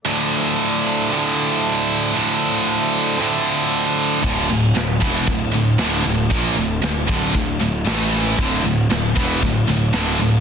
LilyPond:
<<
  \new Staff \with { instrumentName = "Harmonium" } { \time 4/4 \key d \minor \tempo 4 = 116 d''1 | c''1 | r1 | r1 |
r1 | }
  \new Staff \with { instrumentName = "Harmonium" } { \time 4/4 \key d \minor <f a d' a'>1~ | <f a d' a'>1 | r1 | r1 |
r1 | }
  \new Staff \with { instrumentName = "Distorted electric guitar" } { \clef bass \time 4/4 \key d \minor <d, a, d>2 <d, a, d>2 | <d, a, d>2 <d, a, d>2 | <d, a, d>8 <d, a,>8 <d, a,>8 <e, b, e>8 <d, a,>8 <d, a,>8 <d, a, d>8 <d, a,>8 | <bes, f bes>8 <d, a,>8 <d, a,>8 <d, a, d>8 <d, a,>8 <d, a,>8 <a, e a>4 |
<d, a, d>8 <d, a,>8 <d, a,>8 <e, b, e>8 <d, a,>8 <d, a,>8 <d, a, d>8 <d, a,>8 | }
  \new Staff \with { instrumentName = "Distorted electric guitar" } { \clef bass \time 4/4 \key d \minor <d, a, d>2 <d, a, d>2 | <d, a, d>2 <d, a, d>2 | <d, a, d>8 <d, a,>8 <d, a,>8 <e, b, e>8 <d, a,>8 <d, a,>8 <d, a, d>8 <d, a,>8 | <bes, f bes>8 <d, a,>8 <d, a,>8 <d, a, d>8 <d, a,>8 <d, a,>8 <a, e a>4 |
<d, a, d>8 <d, a,>8 <d, a,>8 <e, b, e>8 <d, a,>8 <d, a,>8 <d, a, d>8 <d, a,>8 | }
  \new Staff \with { instrumentName = "Distorted electric guitar" } { \clef bass \time 4/4 \key d \minor r1 | r1 | <d, a, d>8 <d, a,>8 <d, a,>8 <e, b, e>8 <d, a,>8 <d, a,>8 <d, a, d>8 <d, a,>8 | <bes, f bes>8 <d, a,>8 <d, a,>8 <d, a, d>8 <d, a,>8 <d, a,>8 <a, e a>4 |
<d, a, d>8 <d, a,>8 <d, a,>8 <e, b, e>8 <d, a,>8 <d, a,>8 <d, a, d>8 <d, a,>8 | }
  \new Staff \with { instrumentName = "Picked electric bass" } { \clef bass \time 4/4 \key d \minor r1 | r1 | d,,8 d,,8 d,,8 e,,8 d,,8 d,,8 d,,8 d,,8 | bes,,8 d,,8 d,,8 d,,8 d,,8 d,,8 a,,4 |
d,,8 d,,8 d,,8 e,,8 d,,8 d,,8 d,,8 d,,8 | }
  \new DrumStaff \with { instrumentName = "Drums" } \drummode { \time 4/4 r4 r4 r4 r4 | r4 r4 r4 r4 | <cymc bd>4 <cymc sn>8 bd8 <cymc bd>4 <cymc sn>4 | <cymc bd>4 <cymc sn>8 bd8 <cymc bd>4 <cymc sn>4 |
<cymc bd>4 <cymc sn>8 bd8 <cymc bd>4 <cymc sn>4 | }
>>